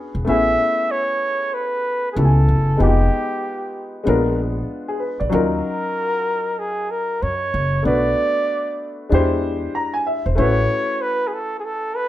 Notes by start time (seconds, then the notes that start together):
Already playing: B3 C#4 D4 F#4 G#4
0.15 E1
0.25 A1 A3 B3 C#4 E4
0.29 G#4 E5
0.91 C#5
1.54 B4
2.12 A3 B3 G#4
2.16 C#2 C#4 E4 G4 A4
2.25 G#5
2.49 F#1
2.77 F1 G#3 B3 D#4 F4
2.82 G4
4.04 A#1 G#3 B3 D4 F4
4.09 A#4
4.88 G#4
5.00 B4
5.20 A#1 D5
5.29 D#2 F#3 C#4 D#4 F4 A#4
5.34 A#4
6.59 G#4
6.90 A#4
7.22 F#2 C#5
7.54 F#1
7.83 B1 A3 B3 D4 F#4 D5
7.87 B4
9.09 E2 G#3 D4 E4 G4
9.14 C5
9.75 A#5
9.94 G#5
10.07 E5
10.26 E1 C5
10.35 A1 A3 C#4 E4 F#4 C#5
10.40 B4
11.01 B4
11.27 G#4
11.33 A4
11.59 G#4
11.64 A4
11.96 B4